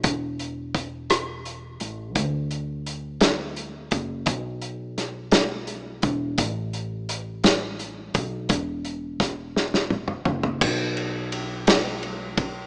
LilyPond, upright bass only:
\new Staff \with { instrumentName = "Upright bass" } { \clef bass \time 6/8 \key e \dorian \tempo 4. = 57 e,,2~ e,,8 a,,8 | d,2~ d,8 fis,,8 | b,,2~ b,,8 e,,8 | a,,2~ a,,8 b,,8 |
e,,2~ e,,8 fis,,8 | b,,2. | }